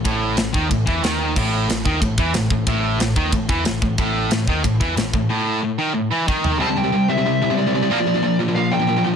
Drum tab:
CC |--------|x-------|--------|--------|
RD |b-b-b-b-|--b-b-b-|b-b-b-b-|b-b-b-b-|
SD |--o---o-|--o---o-|--o---o-|--o---o-|
FT |--------|--------|--------|--------|
BD |o--ooo--|o--ooo-o|o--ooo-o|o--ooo-o|

CC |--------|--------|--------|
RD |--------|--------|--------|
SD |--------|--------|--------|
FT |-------o|--------|--------|
BD |------o-|--------|--------|